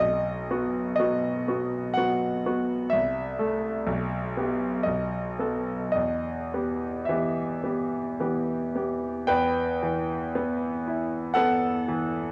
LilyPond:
<<
  \new Staff \with { instrumentName = "Grand piano" } { \time 3/4 \key e \minor \tempo 4 = 59 dis''4 dis''4 fis''4 | e''2 dis''4 | dis''4 e''4 r4 | <b' g''>2 <a' fis''>4 | }
  \new Staff \with { instrumentName = "Grand piano" } { \time 3/4 \key e \minor b,,8 <b fis'>8 <fis b fis'>8 <b fis'>8 <fis b fis'>8 <b fis'>8 | c,8 <a a'>8 b,,8 <b g'>8 b,,8 <b a'>8 | e,8 <b g'>8 <e b g'>8 <b g'>8 <e b g'>8 <b g'>8 | e,8 e8 b8 e'8 b8 e8 | }
>>